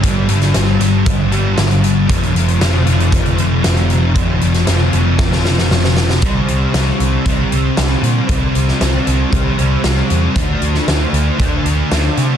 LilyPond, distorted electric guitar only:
\new Staff \with { instrumentName = "Distorted electric guitar" } { \clef bass \time 4/4 \key f \major \tempo 4 = 116 <g, d g>8 <d g>8 <g, d g>8 <d g>4 <d g>8 <g, d g>4 | <f, c f>8 <c f>8 <f, c f>8 <c f>4 <c f>8 <f, c f>4 | <f, c f>8 <c f>8 <f, c f>8 <c f>4 <c f>8 <f, c f>4 | <c g c'>4 <c g c'>4 <c g c'>8 <g c'>8 <c g c'>4 |
<c g c'>4 <c g c'>4 <c g c'>8 <g c'>8 <c g c'>4 | <d a d'>4 <d a d'>4 <d a d'>8 <a d'>8 <d a d'>4 | }